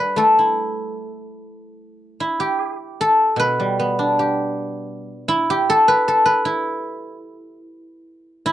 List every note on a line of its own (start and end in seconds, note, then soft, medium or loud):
0.00 0.96 G3 soft
0.00 1.01 G4 medium
0.00 0.17 A4 medium
0.00 2.03 B4 medium
0.00 1.44 D5 medium
0.00 1.15 E5 medium
0.16 2.59 A3 soft
0.16 2.37 A4 medium
0.39 2.00 E4 soft
2.20 4.81 E4 medium
2.40 4.19 G4 medium
3.01 5.21 A4 medium
3.36 5.65 B2 soft
3.36 5.44 B4 medium
3.60 5.10 G3 soft
3.79 5.29 B3 soft
3.99 5.48 D4 soft
4.19 5.49 G4 soft
5.28 6.45 E4 medium
5.50 7.86 G4 medium
5.70 6.08 A4 medium
5.88 6.25 B4 medium
6.08 8.28 A4 medium
6.26 8.30 B4 medium
6.45 8.45 E4 medium
8.46 8.53 E4 medium